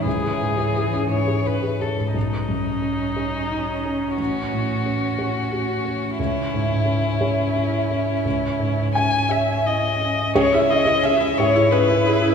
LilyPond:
<<
  \new Staff \with { instrumentName = "Violin" } { \time 6/8 \key cis \minor \tempo 4. = 58 gis'4. cis''8 b'8 a'8 | dis'2. | fis'2. | e'2.~ |
e'4 gis''8 e''8 dis''4 | cis''16 e''16 dis''8 e''8 cis''8 b'4 | }
  \new Staff \with { instrumentName = "Viola" } { \time 6/8 \key cis \minor r2. | r2. | r2. | r2. |
r2. | gis'16 e'16 gis'16 e'16 gis'16 e'16 gis'16 e'16 gis'16 e'16 gis'16 e'16 | }
  \new Staff \with { instrumentName = "Felt piano" } { \time 6/8 \key cis \minor << { r2. | r2. | r2. | r2. |
r4 gis''8 e''8 dis''4 | cis''16 e''16 dis''8 e''8 cis''8 b'4 | } \\ { <cis, cis'>16 <gis' cis''>16 gis,16 <gis' cis''>16 <gis' cis''>16 cis'16 gis,16 <gis' cis''>16 cis'16 <gis' cis''>16 <gis' cis''>16 gis,16 | b,,8 fis,8 cis'8 cis''8 dis'8 cis'8 | a,,8 a,8 cis'8 cis''8 fis'8 cis'8 | cis,8 gis,8 cis'8 cis''8 e'8 cis'8 |
cis,8 gis,8 cis'8 cis''8 e'8 cis'8 | cis,16 gis'16 cis'16 cis''16 gis'16 cis'16 gis,16 gis'16 cis'16 cis''16 gis'16 cis'16 | } >> }
  \new Staff \with { instrumentName = "Synth pluck" } { \time 6/8 \key cis \minor r2. | r2. | r2. | r2. |
r2. | cis'16 r16 e'16 cis''16 cis'16 e'16 gis'16 e'16 cis'16 r16 e'16 gis'16 | }
  \new Staff \with { instrumentName = "Cello" } { \time 6/8 \key cis \minor e2~ e8 r8 | cis'2.~ | cis'2. | cis'2.~ |
cis'2~ cis'8 r8 | r4. e'4. | }
>>